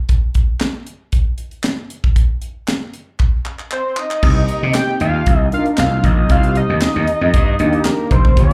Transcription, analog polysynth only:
0, 0, Header, 1, 2, 480
1, 0, Start_track
1, 0, Key_signature, -3, "minor"
1, 0, Tempo, 517241
1, 86, Time_signature, 4, 2, 24, 8
1, 7917, End_track
2, 0, Start_track
2, 0, Title_t, "Analog polysynth"
2, 0, Program_c, 0, 90
2, 3922, Note_on_c, 0, 58, 77
2, 3927, Note_on_c, 0, 60, 66
2, 3928, Note_on_c, 0, 63, 63
2, 3930, Note_on_c, 0, 67, 85
2, 4657, Note_off_c, 0, 58, 0
2, 4659, Note_off_c, 0, 60, 0
2, 4660, Note_off_c, 0, 63, 0
2, 4661, Note_off_c, 0, 67, 0
2, 5125, Note_on_c, 0, 62, 72
2, 5126, Note_on_c, 0, 58, 77
2, 5127, Note_on_c, 0, 63, 76
2, 5130, Note_on_c, 0, 70, 91
2, 5679, Note_off_c, 0, 58, 0
2, 5679, Note_off_c, 0, 62, 0
2, 5680, Note_off_c, 0, 63, 0
2, 5681, Note_off_c, 0, 70, 0
2, 5843, Note_on_c, 0, 58, 77
2, 5843, Note_on_c, 0, 60, 72
2, 5845, Note_on_c, 0, 63, 70
2, 5848, Note_on_c, 0, 67, 79
2, 6577, Note_off_c, 0, 58, 0
2, 6577, Note_off_c, 0, 60, 0
2, 6578, Note_off_c, 0, 63, 0
2, 6580, Note_off_c, 0, 67, 0
2, 7046, Note_on_c, 0, 58, 92
2, 7049, Note_on_c, 0, 63, 91
2, 7050, Note_on_c, 0, 62, 87
2, 7052, Note_on_c, 0, 66, 86
2, 7110, Note_off_c, 0, 66, 0
2, 7110, Note_on_c, 0, 67, 113
2, 7599, Note_off_c, 0, 58, 0
2, 7601, Note_off_c, 0, 62, 0
2, 7601, Note_off_c, 0, 63, 0
2, 7631, Note_off_c, 0, 67, 0
2, 7758, Note_on_c, 0, 58, 72
2, 7761, Note_on_c, 0, 62, 68
2, 7763, Note_on_c, 0, 65, 72
2, 7764, Note_on_c, 0, 67, 84
2, 7917, Note_off_c, 0, 58, 0
2, 7917, Note_off_c, 0, 62, 0
2, 7917, Note_off_c, 0, 65, 0
2, 7917, Note_off_c, 0, 67, 0
2, 7917, End_track
0, 0, End_of_file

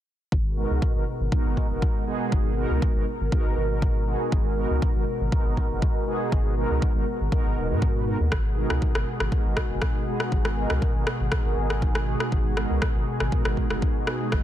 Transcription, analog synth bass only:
0, 0, Header, 1, 2, 480
1, 0, Start_track
1, 0, Key_signature, 5, "minor"
1, 0, Tempo, 500000
1, 309, Time_signature, 4, 2, 24, 8
1, 13856, End_track
2, 0, Start_track
2, 0, Title_t, "Analog synth bass"
2, 0, Program_c, 0, 38
2, 308, Note_on_c, 0, 32, 93
2, 624, Note_off_c, 0, 32, 0
2, 676, Note_on_c, 0, 37, 79
2, 760, Note_off_c, 0, 37, 0
2, 915, Note_on_c, 0, 32, 95
2, 999, Note_off_c, 0, 32, 0
2, 1154, Note_on_c, 0, 32, 88
2, 1239, Note_off_c, 0, 32, 0
2, 1393, Note_on_c, 0, 32, 94
2, 1478, Note_off_c, 0, 32, 0
2, 1636, Note_on_c, 0, 30, 81
2, 1720, Note_off_c, 0, 30, 0
2, 2229, Note_on_c, 0, 32, 90
2, 2545, Note_off_c, 0, 32, 0
2, 2597, Note_on_c, 0, 37, 84
2, 2680, Note_off_c, 0, 37, 0
2, 2839, Note_on_c, 0, 32, 93
2, 2922, Note_off_c, 0, 32, 0
2, 3078, Note_on_c, 0, 32, 91
2, 3161, Note_off_c, 0, 32, 0
2, 3318, Note_on_c, 0, 32, 75
2, 3401, Note_off_c, 0, 32, 0
2, 3429, Note_on_c, 0, 32, 92
2, 3985, Note_off_c, 0, 32, 0
2, 4151, Note_on_c, 0, 32, 93
2, 4466, Note_off_c, 0, 32, 0
2, 4515, Note_on_c, 0, 37, 78
2, 4600, Note_off_c, 0, 37, 0
2, 4758, Note_on_c, 0, 32, 92
2, 4841, Note_off_c, 0, 32, 0
2, 4998, Note_on_c, 0, 32, 90
2, 5081, Note_off_c, 0, 32, 0
2, 5238, Note_on_c, 0, 32, 89
2, 5321, Note_off_c, 0, 32, 0
2, 5481, Note_on_c, 0, 30, 77
2, 5562, Note_off_c, 0, 30, 0
2, 6070, Note_on_c, 0, 32, 93
2, 6386, Note_off_c, 0, 32, 0
2, 6437, Note_on_c, 0, 37, 79
2, 6520, Note_off_c, 0, 37, 0
2, 6676, Note_on_c, 0, 32, 91
2, 6760, Note_off_c, 0, 32, 0
2, 6919, Note_on_c, 0, 32, 91
2, 7001, Note_off_c, 0, 32, 0
2, 7161, Note_on_c, 0, 32, 78
2, 7242, Note_off_c, 0, 32, 0
2, 7271, Note_on_c, 0, 27, 83
2, 7397, Note_on_c, 0, 44, 76
2, 7411, Note_off_c, 0, 27, 0
2, 7824, Note_off_c, 0, 44, 0
2, 7877, Note_on_c, 0, 39, 99
2, 7960, Note_off_c, 0, 39, 0
2, 7988, Note_on_c, 0, 32, 98
2, 8304, Note_off_c, 0, 32, 0
2, 8358, Note_on_c, 0, 37, 81
2, 8441, Note_off_c, 0, 37, 0
2, 8596, Note_on_c, 0, 32, 92
2, 8680, Note_off_c, 0, 32, 0
2, 8834, Note_on_c, 0, 32, 93
2, 8919, Note_off_c, 0, 32, 0
2, 9076, Note_on_c, 0, 32, 89
2, 9160, Note_off_c, 0, 32, 0
2, 9318, Note_on_c, 0, 30, 78
2, 9401, Note_off_c, 0, 30, 0
2, 9909, Note_on_c, 0, 32, 95
2, 10225, Note_off_c, 0, 32, 0
2, 10277, Note_on_c, 0, 37, 78
2, 10360, Note_off_c, 0, 37, 0
2, 10515, Note_on_c, 0, 32, 91
2, 10599, Note_off_c, 0, 32, 0
2, 10755, Note_on_c, 0, 32, 91
2, 10839, Note_off_c, 0, 32, 0
2, 10994, Note_on_c, 0, 32, 75
2, 11079, Note_off_c, 0, 32, 0
2, 11105, Note_on_c, 0, 32, 92
2, 11663, Note_off_c, 0, 32, 0
2, 11829, Note_on_c, 0, 32, 94
2, 12145, Note_off_c, 0, 32, 0
2, 12197, Note_on_c, 0, 37, 80
2, 12280, Note_off_c, 0, 37, 0
2, 12437, Note_on_c, 0, 32, 90
2, 12521, Note_off_c, 0, 32, 0
2, 12677, Note_on_c, 0, 32, 91
2, 12760, Note_off_c, 0, 32, 0
2, 12917, Note_on_c, 0, 32, 93
2, 13000, Note_off_c, 0, 32, 0
2, 13158, Note_on_c, 0, 30, 83
2, 13241, Note_off_c, 0, 30, 0
2, 13750, Note_on_c, 0, 32, 97
2, 13856, Note_off_c, 0, 32, 0
2, 13856, End_track
0, 0, End_of_file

